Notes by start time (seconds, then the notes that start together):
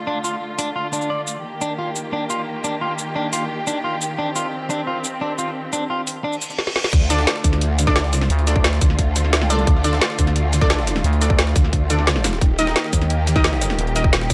Already playing: D3 A3 F4
0.07 D4
0.24 F4, shaker
0.59 D4, open hi-hat, shaker
0.76 F4
0.93 D4, shaker
1.01 shaker
1.10 D5
1.27 shaker
1.44 D#3 A#3 G4
1.61 D4, shaker
1.79 F4
1.96 shaker
2.13 D4
2.30 F4, shaker
2.64 D4, shaker
2.81 F4
2.98 shaker
3.16 D4
3.33 F4, open hi-hat, shaker
3.67 D4, shaker
3.84 F4
4.01 shaker
4.19 C4 D4
4.36 F4, shaker
4.70 D4, shaker
4.87 F4
5.04 shaker
5.21 D4
5.39 F4, shaker
5.73 D4, shaker
5.90 F4
6.07 open hi-hat, shaker
6.24 D4, reverse cymbal
6.33 shaker
6.41 shaker
6.50 shaker
6.59 snare
6.67 snare
6.76 snare
6.84 snare
6.93 D2 D3 A3 F4, kick, closed hi-hat, crash
7.10 D4 A4 D5, snare, closed hi-hat, shaker
7.19 snare
7.27 snare, closed hi-hat
7.36 snare
7.44 D2, kick, closed hi-hat, shaker
7.53 snare, closed hi-hat
7.61 closed hi-hat
7.79 snare, closed hi-hat, shaker
7.87 D4 A4 D5, kick, snare, closed hi-hat
7.96 snare, closed hi-hat
8.04 C#2, snare
8.13 snare, closed hi-hat, shaker
8.21 snare
8.30 D2, closed hi-hat
8.39 closed hi-hat
8.47 D4 A4 D5, snare, closed hi-hat, shaker
8.56 kick
8.64 snare, closed hi-hat
8.73 snare
8.81 D2, kick, snare, closed hi-hat, shaker
8.90 snare
8.99 kick, closed hi-hat
9.16 snare, closed hi-hat, shaker
9.24 snare
9.33 snare, closed hi-hat
9.41 C#2, snare
9.50 D4 A4 D5, closed hi-hat, shaker
9.59 closed hi-hat
9.67 D2, kick, closed hi-hat
9.84 D4 A4 D5, snare, closed hi-hat, shaker
9.93 snare
10.01 snare, closed hi-hat
10.10 snare
10.19 D2, kick, closed hi-hat, shaker
10.27 snare, closed hi-hat
10.36 closed hi-hat
10.53 snare, closed hi-hat, shaker
10.61 D4 A4 D5, kick, snare, closed hi-hat
10.70 snare, closed hi-hat
10.79 snare
10.87 snare, closed hi-hat, shaker
10.96 snare
11.04 D2, closed hi-hat
11.13 closed hi-hat
11.21 D4 A4 D5, snare, closed hi-hat, shaker
11.30 kick
11.39 snare, closed hi-hat
11.47 snare
11.56 D2, kick, snare, closed hi-hat, shaker
11.64 snare
11.73 kick, closed hi-hat
11.90 D4 A4 D5, snare, closed hi-hat, shaker
11.99 snare
12.07 snare, closed hi-hat
12.16 snare
12.24 snare, closed hi-hat, shaker
12.33 snare
12.41 D#1 D#3 A#3 G4, kick, closed hi-hat
12.59 D#4 A#4 D#5, snare, closed hi-hat, shaker
12.67 snare
12.76 snare, closed hi-hat
12.84 snare
12.93 D#2, kick, closed hi-hat, shaker
13.02 snare, closed hi-hat
13.10 closed hi-hat
13.27 snare, closed hi-hat, shaker
13.36 D#4 A#4 D#5, kick, snare, closed hi-hat
13.44 snare, closed hi-hat
13.53 snare
13.61 snare, closed hi-hat, shaker
13.70 snare
13.79 D#1, closed hi-hat
13.87 closed hi-hat
13.96 D#4 A#4 D#5, snare, closed hi-hat, shaker
14.04 kick
14.13 snare, closed hi-hat
14.21 snare
14.30 D#2, kick, snare, closed hi-hat, shaker